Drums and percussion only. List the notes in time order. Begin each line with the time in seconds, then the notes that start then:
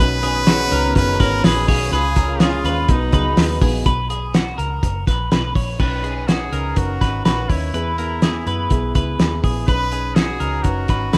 0.00 kick, hi-hat pedal
0.23 hi-hat pedal, open hi-hat
0.47 snare, hi-hat pedal, open hi-hat
0.72 hi-hat pedal, open hi-hat
0.95 kick, hi-hat pedal, open hi-hat
1.20 kick, snare, hi-hat pedal, open hi-hat
1.44 snare, hi-hat pedal, open hi-hat
1.68 kick, hi-hat pedal, open hi-hat
1.92 hi-hat pedal, open hi-hat
2.16 kick, hi-hat pedal, open hi-hat
2.40 snare, hi-hat pedal, open hi-hat
2.65 hi-hat pedal, open hi-hat
2.88 kick, hi-hat pedal, open hi-hat
3.12 kick, hi-hat pedal, open hi-hat
3.37 snare, hi-hat pedal, open hi-hat
3.61 kick, hi-hat pedal, open hi-hat
3.86 kick, closed hi-hat
4.10 closed hi-hat
4.34 snare, closed hi-hat
4.59 closed hi-hat
4.83 kick, closed hi-hat
5.07 kick, snare, closed hi-hat
5.32 snare, closed hi-hat
5.55 kick, open hi-hat
5.79 kick, crash
6.04 closed hi-hat
6.28 snare, closed hi-hat
6.53 closed hi-hat
6.76 kick, closed hi-hat
7.01 kick, snare, closed hi-hat
7.25 snare, closed hi-hat
7.50 kick, open hi-hat
7.74 closed hi-hat
7.98 closed hi-hat
8.22 snare, closed hi-hat
8.47 closed hi-hat
8.70 kick, closed hi-hat
8.95 kick, closed hi-hat
9.19 snare, closed hi-hat
9.44 kick, open hi-hat
9.68 kick, closed hi-hat
9.92 closed hi-hat
10.16 snare, closed hi-hat
10.40 closed hi-hat
10.64 kick, closed hi-hat
10.88 kick, snare, closed hi-hat
11.13 snare, closed hi-hat